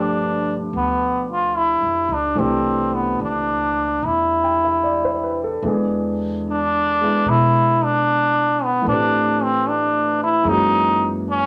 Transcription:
Already playing: upright bass G2, grand piano F3 A3 D4 G4 B4
0.00 trombone D4
0.73 upright bass D2, trombone B3
1.32 trombone F4
1.57 trombone E4
1.81 upright bass F2
2.09 upright bass C#2
2.13 trombone D4
2.35 upright bass C2, grand piano E3 A3 C4 D4, trombone C4
2.39 grand piano G4
2.95 trombone B3
3.20 upright bass C#2, trombone D4
4.03 upright bass E2, trombone E4
4.44 grand piano G5
4.65 grand piano E5
4.83 grand piano D5
5.05 grand piano C5
5.23 grand piano B4
5.44 grand piano A4
5.63 upright bass E2, grand piano E3 G#3 B3
5.67 grand piano D4 G#4
6.50 trombone D4
7.01 grand piano G#3 B3 E4
7.25 upright bass B2, trombone E4
7.84 trombone D4
8.64 trombone B3
8.82 grand piano E3 A3
8.86 upright bass A2, grand piano C4 B4, trombone D4
8.93 grand piano G4
9.43 trombone C4
9.68 trombone D4
10.23 trombone E4
10.43 upright bass F#2, grand piano E3 G#3 A#3 C#4
10.49 trombone D#4, grand piano F#4
11.30 trombone C#4

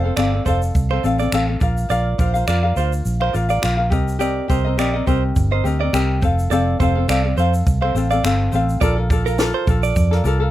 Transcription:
Already playing: fingered electric bass F1, clean electric guitar C5
0.04 ukulele C4 A4 F5
0.16 fingered electric bass G1, ukulele C4 A4 D5 F5, clean electric guitar D5, finger snap, shaker
0.32 ukulele C4 A4 F5
0.45 fingered electric bass F1, ukulele C4 A4 D5 F5, clean electric guitar C5, kick, shaker
0.62 shaker
0.75 fingered electric bass C2, kick, shaker
0.90 ukulele C4 A4 F5, clean electric guitar C5, finger snap
1.03 fingered electric bass A1, ukulele C4 A4 D5 F5, shaker
1.19 ukulele C4 A4 F5, clean electric guitar D5, shaker
1.32 fingered electric bass A1, ukulele C4 A4 D5 F5, finger snap, shaker
1.47 ukulele C4 A4 F5
1.60 fingered electric bass A#1, ukulele F4 A#4 D5 F5, kick, shaker
1.77 shaker
1.89 fingered electric bass A#1, ukulele F4 A#4 D5 F5, clean electric guitar D5, shaker
2.18 fingered electric bass A#1, ukulele F4 A#4 D5 F5, clean electric guitar C5, kick, shaker
2.34 ukulele F4 A#4 F5, shaker
2.47 fingered electric bass F2, ukulele F4 A#4 D5 F5, clean electric guitar D5, finger snap, shaker
2.63 ukulele F4 A#4 F5
2.76 fingered electric bass D2, ukulele F4 A#4 D5 F5, clean electric guitar C5, shaker
2.93 shaker
3.05 fingered electric bass A#1, shaker
3.20 ukulele F4 A#4 F5, clean electric guitar C5, finger snap
3.33 fingered electric bass A1, ukulele F4 A#4 D5 F5, shaker
3.49 ukulele F4 A#4 F5, clean electric guitar D5, shaker
3.62 fingered electric bass A#1, ukulele F4 A#4 D5 F5, finger snap, shaker
3.77 ukulele F4 A#4 F5
3.90 fingered electric bass C2, ukulele C4 G4 A#4 D#5, kick, shaker
4.08 shaker
4.19 ukulele C4 G4 A#4 D#5, clean electric guitar D5, shaker
4.48 fingered electric bass C2, ukulele C4 G4 A#4 D#5, clean electric guitar C5, kick, shaker
4.65 ukulele C4 A#4 D#5
4.77 fingered electric bass A#1, ukulele C4 G4 A#4 D#5, clean electric guitar D5, finger snap, shaker
4.94 ukulele C4 A#4 D#5
5.06 fingered electric bass C2, ukulele C4 G4 A#4 D#5, clean electric guitar C5, kick, shaker
5.36 fingered electric bass G1, kick, shaker
5.51 ukulele C4 A#4 D#5, clean electric guitar C5
5.64 fingered electric bass D2, ukulele C4 G4 A#4 D#5, shaker
5.80 ukulele C4 A#4 D#5, clean electric guitar D5
5.93 fingered electric bass C2, ukulele C4 G4 A#4 D#5, finger snap, shaker
6.21 fingered electric bass F1, ukulele C4 A4 C5 F5, kick, shaker
6.39 shaker
6.51 fingered electric bass F1, ukulele C4 A4 C5 F5, clean electric guitar D5, shaker
6.79 fingered electric bass F1, ukulele C4 A4 C5 F5, clean electric guitar C5, kick, shaker
6.95 ukulele C4 A4 F5
7.08 fingered electric bass C2, ukulele C4 A4 C5 F5, clean electric guitar D5, finger snap, shaker
7.23 ukulele C4 F5
7.36 fingered electric bass F2, ukulele C4 A4 C5 F5, clean electric guitar C5, shaker
7.54 shaker
7.67 fingered electric bass C2, kick, shaker
7.81 ukulele C4 A4 F5, clean electric guitar C5, finger snap
7.95 fingered electric bass A1, ukulele C4 A4 C5 F5, shaker
8.10 ukulele C4 A4 F5, clean electric guitar D5, shaker
8.23 fingered electric bass G1, ukulele C4 A4 C5 F5, finger snap, shaker
8.52 fingered electric bass A1, ukulele C4 A4 C5 F5, shaker
8.69 shaker
8.81 fingered electric bass A#1, ukulele F4 A4 A#4 D5, clean electric guitar D5, kick, shaker
8.96 ukulele F4 A4 A#4
9.10 ukulele F4 A4 A#4 D5, kick, shaker
9.25 ukulele F4 A4 A#4, clean electric guitar A#4, shaker
9.38 ukulele F4 A4 A#4 D5, snare, shaker
9.54 clean electric guitar C5
9.67 fingered electric bass A#1, ukulele F4 A4 A#4 D5, kick, shaker
9.83 clean electric guitar D5, shaker
9.96 fingered electric bass F2, kick, shaker
10.11 ukulele F4 A4 A#4, snare
10.24 fingered electric bass C2, ukulele F4 A4 A#4 D5, shaker
10.40 ukulele F4 A4 A#4

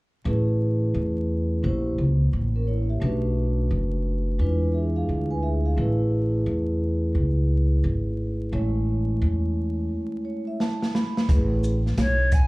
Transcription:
0.25 upright bass A1, vibraphone A3 C#4 E4 G#4 B4
0.94 upright bass E2
1.63 upright bass A#1, vibraphone A#3 C#4 E4 G4 C5
1.98 upright bass C#2
2.33 upright bass A1
2.56 vibraphone C#4 A#4
2.67 vibraphone E4 C#5
2.89 vibraphone G4 E5
3.00 upright bass B1, vibraphone A3 C#4 D4 F#4 B4
3.71 upright bass F#1
4.39 upright bass E2, vibraphone G#3 D4 E4 F4 B4
4.74 vibraphone G#4 E5
4.96 vibraphone G#4 F5
5.09 upright bass D2
5.31 vibraphone B4 G#5
5.43 vibraphone G#4 E5
5.66 vibraphone G#4 F5
5.77 upright bass A1, vibraphone A3 C#4 E4 G#4 B4
6.46 upright bass E2
7.15 upright bass C#2
7.84 upright bass G#1
8.52 upright bass A1, vibraphone G#3 A3 C#4 E4 C#5
9.22 upright bass E2
10.25 vibraphone C#5
10.47 vibraphone E5
10.60 vibraphone A5, snare
10.82 snare
10.95 vibraphone B5, snare
11.17 snare
11.28 upright bass A1, vibraphone A3 C#4 E4 G#4 B4, kick, closed hi-hat
11.64 shaker
11.86 snare
11.97 upright bass B1, flute C#5, snare, closed hi-hat
12.32 flute G#5, kick, closed hi-hat, shaker

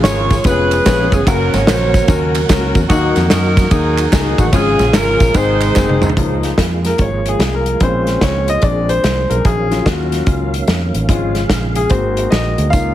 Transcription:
Already playing: grand piano C#3, tonewheel organ C#3 F3 G#3 F4 G#4
0.03 fingered electric bass G#1, grand piano C#4 F4 A#4, saxophone section F4 G#4 C#5, snare, clap, ride, tambourine
0.30 kick, snare, ride, tambourine
0.44 fingered electric bass F1, grand piano B3 C#4 F4 G#4 C#5, tonewheel organ B3 C#4 G#4, saxophone section G#4 B4, kick, ride, tambourine
0.71 clap, ride, tambourine
0.86 fingered electric bass A#1, grand piano B3 C#4 F4 G#4 C#5, kick, snare, clap, ride, tambourine
1.12 fingered electric bass G1, saxophone section G#4, kick, ride, tambourine
1.27 fingered electric bass F#1, tonewheel organ C#3 F#3 A#3 F#4 A#4, grand piano C#4 F#4 A#4, saxophone section C#4 F#4 A#4, kick, ride, tambourine
1.53 fingered electric bass G#1, saxophone section F#4 A#4 C#5, snare, ride, tambourine
1.67 fingered electric bass A#1, grand piano C#4 F#4 C5, snare, clap, ride, tambourine
1.94 kick, snare, ride, tambourine
2.08 fingered electric bass D#2, grand piano C#4 F#4 A#4, kick, ride, tambourine
2.35 clap, ride, tambourine
2.49 fingered electric bass C#2, grand piano C#4 F#4 A#4, kick, snare, clap, ride, tambourine
2.75 fingered electric bass E2, kick, ride, tambourine
2.89 fingered electric bass D#2, tonewheel organ D#3 F#3, grand piano D#3 D#4 F#4 A#4, saxophone section A#3 D#4 F#4, kick, ride, tambourine
3.16 fingered electric bass F2, snare, ride, tambourine
3.30 fingered electric bass F#2, saxophone section D#4 F#4 A#4, grand piano D#4 F#4 A#4, snare, clap, ride, tambourine
3.57 kick, snare, ride, tambourine
3.71 fingered electric bass D#2, grand piano D#4 F#4 A#4, saxophone section D#4 G#4, kick, ride, tambourine
3.98 clap, ride, tambourine
4.12 fingered electric bass C#2, grand piano D#4 F#4 G#4, kick, snare, clap, ride, tambourine
4.38 fingered electric bass A1, saxophone section F#4, kick, ride, tambourine
4.52 fingered electric bass G#1, grand piano G#2 C#4 F4 G#4, tonewheel organ C#3 F3 G#3 F4 G#4, saxophone section C#4 F4 G#4, kick, ride, tambourine
4.79 fingered electric bass A#1, snare, ride, tambourine
4.93 fingered electric bass G#1, saxophone section C#4 F4 A#4, grand piano C#4 F4 A#4, snare, clap, ride, tambourine
5.20 fingered electric bass A#1, kick, snare, ride, tambourine
5.33 fingered electric bass G#1, grand piano G#2 C4 D#4 G#4, tonewheel organ C3 D#3 G#3 D#4, saxophone section D#4 G#4 C5, kick, ride, tambourine
5.61 clap, ride, tambourine
5.76 fingered electric bass F#1, grand piano C4 D#4 G#4, kick, snare, clap, tambourine
5.89 high tom
6.02 fingered electric bass D2, mid tom, tambourine
6.09 floor tom
6.17 fingered electric bass C#2, grand piano F3 A#3 D#4, tonewheel organ F3 G#3 A#3 F4 G#4, kick, closed hi-hat
6.43 snare, closed hi-hat
6.58 fingered electric bass F2, kick, snare, closed hi-hat
6.85 grand piano A#4, snare, closed hi-hat
6.98 fingered electric bass G#1, grand piano C#5, kick, closed hi-hat
7.26 grand piano G#4, closed hi-hat
7.39 fingered electric bass C2, snare, closed hi-hat
7.55 grand piano A#4
7.66 closed hi-hat
7.80 fingered electric bass A#1, grand piano G#3 C4 C#4 C5, tonewheel organ C5, kick, closed hi-hat
8.07 snare, closed hi-hat
8.21 fingered electric bass C#2, grand piano C#5, kick, snare, closed hi-hat
8.48 grand piano D#5, closed hi-hat
8.62 fingered electric bass A#1, grand piano G#3 C4 D4 D5, tonewheel organ G#3 D4 G#4, kick, closed hi-hat
8.89 grand piano C5, closed hi-hat
9.04 fingered electric bass C2, snare, closed hi-hat
9.30 fingered electric bass B1, grand piano A#4, closed hi-hat
9.45 fingered electric bass A#1, tonewheel organ D#3 F#3 A#3 C#4 F5, grand piano G#4, kick, closed hi-hat
9.70 grand piano F#3 C#4 F4, snare, closed hi-hat
9.86 fingered electric bass D#2, grand piano F#4, kick, snare, closed hi-hat
10.12 snare, closed hi-hat
10.26 fingered electric bass C#2, grand piano F#3 C#4 F4, kick, closed hi-hat
10.54 closed hi-hat
10.68 fingered electric bass F2, snare, closed hi-hat
10.94 fingered electric bass A1, closed hi-hat
11.09 fingered electric bass G#1, tonewheel organ C#3 F3 G#3 G#4, grand piano G#3 C#4 F4, kick, closed hi-hat
11.35 snare, closed hi-hat
11.50 fingered electric bass A#1, kick, snare, closed hi-hat
11.75 grand piano G#4, closed hi-hat
11.90 fingered electric bass G#1, tonewheel organ D#3 C4 F#4, grand piano A#3 C4 F#4 C5, kick, closed hi-hat
12.17 closed hi-hat
12.30 fingered electric bass A#1, grand piano D#5, snare, closed hi-hat
12.58 fingered electric bass D2, closed hi-hat
12.70 fingered electric bass C#2, grand piano A#3 D#4 F4 F5, tonewheel organ A#3 C#4 F4, kick, closed hi-hat, tambourine

